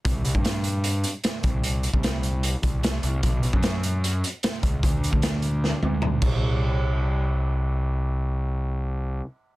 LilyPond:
<<
  \new Staff \with { instrumentName = "Picked electric bass" } { \clef bass \time 4/4 \key b \phrygian \tempo 4 = 150 c,8 c,16 g,2 r8. c,8~ | c,8. c,4.~ c,16 c,4 c,8 | b,,8 b,,16 fis,2 r8. des,8 | d,8. d,4.~ d,16 d,4 c,8~ |
c,1~ | c,1 | }
  \new DrumStaff \with { instrumentName = "Drums" } \drummode { \time 4/4 <hh bd>8 hh16 bd16 <hh sn>8 hh8 hh8 hh8 <hh sn>8 <hh bd>8 | hh8 hh16 bd16 <hh sn>8 hh8 hh8 <hh bd>8 <hh sn>8 hh8 | <hh bd>8 hh16 bd16 <hh sn>8 hh8 hh8 hh8 <hh sn>8 <hh bd>8 | <hh bd>8 hh16 bd16 <hh sn>8 hh8 sn8 tommh8 toml8 <cymc bd>8 |
r4 r4 r4 r4 | r4 r4 r4 r4 | }
>>